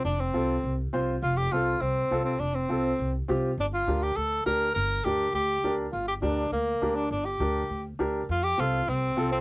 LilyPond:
<<
  \new Staff \with { instrumentName = "Upright piano" } { \time 4/4 \key f \mixolydian \tempo 4 = 204 << { r2. c''4 | r1 | r1 | r1 |
r1 | r1 | r1 | r1 | } \\ { r4 <c' f' a'>8 r4. <c' f'>8 r8 | r4 <c' f' a'>8 r4. <c' f' a'>8 r8 | r4 <c' f' a'>8 r4. <c' f' g'>8 r8 | r4 <d' g' bes'>8 r4. <d' g' bes'>8 r8 |
r4 <d' g' bes'>8 r4. <d' g' bes'>8 r8 | r4 <d' g' bes'>8 r4. <d' g' bes'>8 r8 | r4 <d' g' bes'>8 r4. <d' g' bes'>8 r8 | r4 <c' f' a'>8 r4. <c' f' a'>8 r8 | } >> }
  \new Staff \with { instrumentName = "Tenor saxophone" } { \time 4/4 \key f \mixolydian d'8 c'2 r4. | f'8 g'8 f'4 c'4. c'8 | d'8 c'2 r4. | d'8 f'4 g'8 a'4 bes'4 |
bes'4 g'4 g'4. r8 | f'8 g'8 d'4 bes4. d'8 | d'8 g'2 r4. | f'8 g'8 f'4 c'4. c'8 | }
  \new Staff \with { instrumentName = "Upright bass" } { \clef bass \time 4/4 \key f \mixolydian f,,4 c,4 c,4 c,4 | f,,4 c,4 c,4 c,4 | f,,4 c,4 c,4 c,4 | g,,4 d,4 d,4 d,4 |
g,,4 d,4 d,4 d,4 | g,,4 d,4 d,4 d,4 | g,,4 d,4 d,4 d,4 | f,4 c,4 c,4 c,4 | }
>>